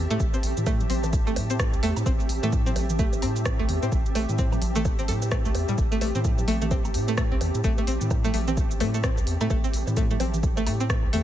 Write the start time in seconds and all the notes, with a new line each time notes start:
Already playing: C4 G4 E5 A5
0.10 A2 A3, shaker
0.20 A1, kick, shaker
0.34 C4, high bongo, shaker
0.43 A1, open hi-hat
0.57 A2, low conga, shaker
0.66 A3, kick, high bongo, high conga, high woodblock, shaker
0.80 high conga, shaker
0.90 A1 C4, open hi-hat, high conga
1.04 high bongo, low conga, shaker
1.13 kick, shaker
1.27 A3, shaker
1.36 A2, open hi-hat, high bongo, high conga
1.50 C4, shaker
1.60 kick, cross-stick, shaker
1.73 A1, high bongo, shaker
1.83 E2 A3, open hi-hat
1.97 A2, high woodblock, shaker
2.06 A1 C4, kick, high bongo, shaker
2.20 shaker
2.29 A1, open hi-hat
2.43 A2 A3, high bongo, low conga, shaker
2.53 kick, high conga, shaker
2.66 C4, high conga, shaker
2.76 A1, open hi-hat, high bongo, high conga
2.90 low conga, shaker
2.99 A3, kick, high conga, shaker
3.13 high bongo, shaker
3.22 A2 C4, open hi-hat, high woodblock
3.36 shaker
3.46 kick, cross-stick, high bongo, shaker
3.59 A1 A3
3.69 E2, open hi-hat, low conga
3.83 A2 C4, high bongo, shaker
3.92 A1, kick, shaker
4.06 shaker
4.15 A1 A3, open hi-hat, high bongo
4.29 A2, low conga, shaker
4.38 C4, kick, high conga, shaker
4.52 high bongo, high conga, high woodblock, shaker
4.62 A1, open hi-hat, high conga
4.76 A3, low conga, shaker
4.85 kick, high bongo, shaker
4.99 C4, shaker
5.08 A2 A4, open hi-hat, high conga
5.22 high bongo, shaker
5.32 A3, kick, cross-stick, shaker
5.45 A1 A3, shaker
5.55 E2, open hi-hat, high bongo
5.69 A2 G3, shaker
5.78 A1, kick, shaker
5.92 A3, shaker
6.01 A1 A3, open hi-hat, high bongo
6.15 A2 C4, low conga, shaker
6.24 kick, high conga, shaker
6.38 high bongo, high conga, shaker
6.48 A1 A3, open hi-hat, high conga
6.62 A3, low conga, shaker
6.71 C4, kick, high bongo, high conga, shaker
6.85 high woodblock, shaker
6.94 A2, open hi-hat
7.08 A3, high bongo, shaker
7.18 A3, kick, cross-stick, shaker
7.32 A1 C4
7.41 E2, open hi-hat, high bongo, low conga
7.55 A2, shaker
7.64 A1 A3, kick, shaker
7.78 A3, high bongo, shaker
7.87 A1 C4, open hi-hat
8.01 A2, low conga, shaker
8.11 kick, high bongo, high conga, high woodblock, shaker
8.24 A3, high conga, shaker
8.34 A1 A3, open hi-hat, high conga
8.48 C4, high bongo, low conga, shaker
8.57 kick, shaker
8.71 shaker
8.80 A2 A3, open hi-hat, high bongo, high conga
8.94 A3, shaker
9.04 C4, kick, cross-stick, shaker
9.18 A1, high bongo, shaker
9.27 E2, open hi-hat
9.41 A2 A3, high woodblock, shaker
9.50 A1 A3, kick, high bongo, shaker
9.64 C4, shaker
9.74 A1, open hi-hat
9.87 A2, high bongo, low conga, shaker
9.97 A3, kick, high conga, shaker
10.11 A3, high conga, shaker
10.20 A1 C4, open hi-hat, high bongo, high conga
10.34 low conga, shaker
10.43 kick, high conga, shaker
10.57 A3, high bongo, shaker
10.67 A2 A3, open hi-hat, high woodblock
10.80 C4, shaker
10.90 kick, cross-stick, high bongo, shaker
11.04 A1
11.13 E2 A3, open hi-hat, low conga